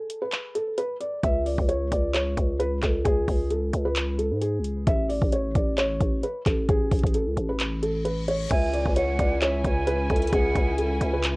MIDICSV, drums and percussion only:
0, 0, Header, 1, 2, 480
1, 0, Start_track
1, 0, Tempo, 454545
1, 1303, Time_signature, 4, 2, 24, 8
1, 11999, End_track
2, 0, Start_track
2, 0, Title_t, "Drums"
2, 105, Note_on_c, 9, 42, 85
2, 211, Note_off_c, 9, 42, 0
2, 344, Note_on_c, 9, 39, 116
2, 344, Note_on_c, 9, 42, 75
2, 449, Note_off_c, 9, 39, 0
2, 450, Note_off_c, 9, 42, 0
2, 586, Note_on_c, 9, 42, 77
2, 691, Note_off_c, 9, 42, 0
2, 823, Note_on_c, 9, 42, 67
2, 929, Note_off_c, 9, 42, 0
2, 1064, Note_on_c, 9, 42, 76
2, 1169, Note_off_c, 9, 42, 0
2, 1303, Note_on_c, 9, 36, 124
2, 1303, Note_on_c, 9, 42, 80
2, 1409, Note_off_c, 9, 36, 0
2, 1409, Note_off_c, 9, 42, 0
2, 1543, Note_on_c, 9, 46, 66
2, 1649, Note_off_c, 9, 46, 0
2, 1670, Note_on_c, 9, 36, 93
2, 1776, Note_off_c, 9, 36, 0
2, 1782, Note_on_c, 9, 42, 82
2, 1888, Note_off_c, 9, 42, 0
2, 2024, Note_on_c, 9, 36, 90
2, 2024, Note_on_c, 9, 42, 81
2, 2130, Note_off_c, 9, 36, 0
2, 2130, Note_off_c, 9, 42, 0
2, 2263, Note_on_c, 9, 39, 119
2, 2264, Note_on_c, 9, 42, 79
2, 2369, Note_off_c, 9, 39, 0
2, 2369, Note_off_c, 9, 42, 0
2, 2504, Note_on_c, 9, 36, 95
2, 2506, Note_on_c, 9, 42, 77
2, 2609, Note_off_c, 9, 36, 0
2, 2611, Note_off_c, 9, 42, 0
2, 2743, Note_on_c, 9, 42, 66
2, 2849, Note_off_c, 9, 42, 0
2, 2983, Note_on_c, 9, 36, 96
2, 2983, Note_on_c, 9, 39, 70
2, 2984, Note_on_c, 9, 42, 75
2, 3089, Note_off_c, 9, 36, 0
2, 3089, Note_off_c, 9, 39, 0
2, 3089, Note_off_c, 9, 42, 0
2, 3223, Note_on_c, 9, 36, 124
2, 3223, Note_on_c, 9, 42, 77
2, 3329, Note_off_c, 9, 36, 0
2, 3329, Note_off_c, 9, 42, 0
2, 3463, Note_on_c, 9, 36, 104
2, 3464, Note_on_c, 9, 46, 66
2, 3569, Note_off_c, 9, 36, 0
2, 3570, Note_off_c, 9, 46, 0
2, 3702, Note_on_c, 9, 42, 81
2, 3808, Note_off_c, 9, 42, 0
2, 3944, Note_on_c, 9, 42, 83
2, 4050, Note_off_c, 9, 42, 0
2, 4183, Note_on_c, 9, 39, 117
2, 4184, Note_on_c, 9, 42, 78
2, 4289, Note_off_c, 9, 39, 0
2, 4289, Note_off_c, 9, 42, 0
2, 4426, Note_on_c, 9, 42, 76
2, 4531, Note_off_c, 9, 42, 0
2, 4664, Note_on_c, 9, 42, 68
2, 4769, Note_off_c, 9, 42, 0
2, 4904, Note_on_c, 9, 42, 76
2, 5010, Note_off_c, 9, 42, 0
2, 5144, Note_on_c, 9, 36, 121
2, 5144, Note_on_c, 9, 42, 83
2, 5249, Note_off_c, 9, 36, 0
2, 5249, Note_off_c, 9, 42, 0
2, 5385, Note_on_c, 9, 46, 67
2, 5490, Note_off_c, 9, 46, 0
2, 5511, Note_on_c, 9, 36, 94
2, 5616, Note_off_c, 9, 36, 0
2, 5623, Note_on_c, 9, 42, 87
2, 5728, Note_off_c, 9, 42, 0
2, 5864, Note_on_c, 9, 36, 97
2, 5865, Note_on_c, 9, 42, 82
2, 5970, Note_off_c, 9, 36, 0
2, 5971, Note_off_c, 9, 42, 0
2, 6104, Note_on_c, 9, 39, 122
2, 6105, Note_on_c, 9, 42, 79
2, 6209, Note_off_c, 9, 39, 0
2, 6210, Note_off_c, 9, 42, 0
2, 6344, Note_on_c, 9, 36, 95
2, 6346, Note_on_c, 9, 42, 78
2, 6449, Note_off_c, 9, 36, 0
2, 6451, Note_off_c, 9, 42, 0
2, 6584, Note_on_c, 9, 42, 67
2, 6689, Note_off_c, 9, 42, 0
2, 6823, Note_on_c, 9, 36, 97
2, 6824, Note_on_c, 9, 39, 71
2, 6824, Note_on_c, 9, 42, 77
2, 6929, Note_off_c, 9, 36, 0
2, 6929, Note_off_c, 9, 39, 0
2, 6930, Note_off_c, 9, 42, 0
2, 7063, Note_on_c, 9, 36, 125
2, 7063, Note_on_c, 9, 42, 80
2, 7169, Note_off_c, 9, 36, 0
2, 7169, Note_off_c, 9, 42, 0
2, 7303, Note_on_c, 9, 36, 105
2, 7303, Note_on_c, 9, 42, 52
2, 7304, Note_on_c, 9, 46, 67
2, 7383, Note_off_c, 9, 42, 0
2, 7383, Note_on_c, 9, 42, 53
2, 7409, Note_off_c, 9, 36, 0
2, 7410, Note_off_c, 9, 46, 0
2, 7430, Note_on_c, 9, 36, 93
2, 7463, Note_off_c, 9, 42, 0
2, 7463, Note_on_c, 9, 42, 55
2, 7536, Note_off_c, 9, 36, 0
2, 7543, Note_off_c, 9, 42, 0
2, 7543, Note_on_c, 9, 42, 85
2, 7648, Note_off_c, 9, 42, 0
2, 7785, Note_on_c, 9, 42, 78
2, 7891, Note_off_c, 9, 42, 0
2, 8023, Note_on_c, 9, 39, 121
2, 8024, Note_on_c, 9, 42, 79
2, 8129, Note_off_c, 9, 39, 0
2, 8130, Note_off_c, 9, 42, 0
2, 8266, Note_on_c, 9, 42, 75
2, 8371, Note_off_c, 9, 42, 0
2, 8503, Note_on_c, 9, 42, 66
2, 8609, Note_off_c, 9, 42, 0
2, 8744, Note_on_c, 9, 42, 78
2, 8850, Note_off_c, 9, 42, 0
2, 8983, Note_on_c, 9, 36, 127
2, 8983, Note_on_c, 9, 49, 108
2, 8984, Note_on_c, 9, 42, 81
2, 9089, Note_off_c, 9, 36, 0
2, 9089, Note_off_c, 9, 42, 0
2, 9089, Note_off_c, 9, 49, 0
2, 9224, Note_on_c, 9, 42, 63
2, 9329, Note_off_c, 9, 42, 0
2, 9350, Note_on_c, 9, 36, 94
2, 9456, Note_off_c, 9, 36, 0
2, 9462, Note_on_c, 9, 42, 83
2, 9568, Note_off_c, 9, 42, 0
2, 9704, Note_on_c, 9, 36, 94
2, 9705, Note_on_c, 9, 42, 85
2, 9810, Note_off_c, 9, 36, 0
2, 9810, Note_off_c, 9, 42, 0
2, 9944, Note_on_c, 9, 39, 122
2, 9944, Note_on_c, 9, 42, 79
2, 10049, Note_off_c, 9, 39, 0
2, 10050, Note_off_c, 9, 42, 0
2, 10184, Note_on_c, 9, 36, 101
2, 10185, Note_on_c, 9, 42, 78
2, 10289, Note_off_c, 9, 36, 0
2, 10291, Note_off_c, 9, 42, 0
2, 10423, Note_on_c, 9, 42, 69
2, 10529, Note_off_c, 9, 42, 0
2, 10663, Note_on_c, 9, 36, 98
2, 10664, Note_on_c, 9, 42, 48
2, 10727, Note_off_c, 9, 42, 0
2, 10727, Note_on_c, 9, 42, 58
2, 10768, Note_off_c, 9, 36, 0
2, 10791, Note_off_c, 9, 42, 0
2, 10791, Note_on_c, 9, 42, 72
2, 10847, Note_off_c, 9, 42, 0
2, 10847, Note_on_c, 9, 42, 83
2, 10903, Note_on_c, 9, 36, 127
2, 10904, Note_off_c, 9, 42, 0
2, 10904, Note_on_c, 9, 42, 83
2, 11009, Note_off_c, 9, 36, 0
2, 11009, Note_off_c, 9, 42, 0
2, 11143, Note_on_c, 9, 36, 107
2, 11144, Note_on_c, 9, 42, 61
2, 11249, Note_off_c, 9, 36, 0
2, 11250, Note_off_c, 9, 42, 0
2, 11382, Note_on_c, 9, 42, 87
2, 11488, Note_off_c, 9, 42, 0
2, 11624, Note_on_c, 9, 42, 82
2, 11730, Note_off_c, 9, 42, 0
2, 11863, Note_on_c, 9, 39, 120
2, 11863, Note_on_c, 9, 42, 83
2, 11968, Note_off_c, 9, 39, 0
2, 11969, Note_off_c, 9, 42, 0
2, 11999, End_track
0, 0, End_of_file